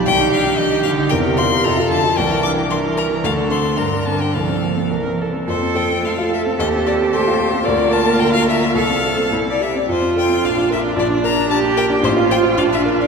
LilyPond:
<<
  \new Staff \with { instrumentName = "Violin" } { \time 2/4 \key c \dorian \tempo 4 = 111 g''8 f''8 ees''8 f''8 | \key f \major g''8 c'''8 bes''8 a''8 | g''8 d'''8 c'''8 bes''8 | f''8 c'''8 bes''8 a''16 g''16 |
f''4 r4 | c''8 g''8 f''8 e''8 | ees''8 d''8 c''4 | d''8 a''8 g''16 f''16 e''8 |
f''4 r16 d''16 e''16 d''16 | c''8 g''8 f''8 e''8 | d''8 bes''8 a''8 g''8 | c''8 g''8 f''16 e''8 d''16 | }
  \new Staff \with { instrumentName = "Viola" } { \time 2/4 \key c \dorian g'4 g'4 | \key f \major bes'4 a'4 | bes'4 bes'4 | a'4 bes'4 |
a'4 bes'8 a'8 | a'2~ | a'2 | bes'2 |
a'4 e'8 r8 | f'4 d'4~ | d'2 | f'4 d'4 | }
  \new Staff \with { instrumentName = "Grand piano" } { \time 2/4 \key c \dorian c,16 ees'16 d'16 ees'16 d'16 ees'16 g'16 ees'16 | \key f \major e,16 g'16 f'16 g'16 f,16 f'16 e'16 f'16 | c,16 e'16 d'16 e'16 d'16 e'16 bes'16 e'16 | d,16 d'16 c'16 d'16 g,16 d'16 c'16 d'16 |
c,16 c'16 bes16 c'16 c,16 c'16 bes16 c'16 | f,16 c'16 a'16 c'16 a16 f'16 a'16 c'16 | ees,16 c'16 a'16 c'16 a16 f'16 a'16 c'16 | d,16 bes16 bes'16 bes16 d16 f'16 bes'16 bes16 |
c,16 c'16 a'16 c'16 c,16 c'16 g'16 c'16 | f,16 c'16 a'16 c'16 bes,,16 d'16 bes'16 d'16 | bes,,16 d'16 bes'16 d'16 bes16 g'16 bes'16 d'16 | a,,16 f'16 c''16 f'16 bes,,16 d'16 bes'16 d'16 | }
  \new Staff \with { instrumentName = "Cello" } { \clef bass \time 2/4 \key c \dorian ees4 ees8 d8 | \key f \major c4 c8 d8 | e4 e4 | d4 d4 |
f4 e8 r8 | a'4 f'4 | g'2 | f'2 |
a'4. r8 | f'2 | d'4 g'4 | f'2 | }
>>